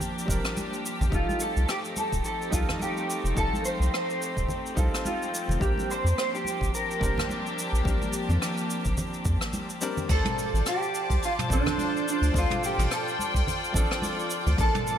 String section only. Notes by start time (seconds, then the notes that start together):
Already playing: F3 A#3 C4 D4 G4
1.11 A3 C4 D#4
5.61 F3 A#3 D4 G4
10.09 F4 C5 D5 A5
12.34 G5
14.59 A#3 A5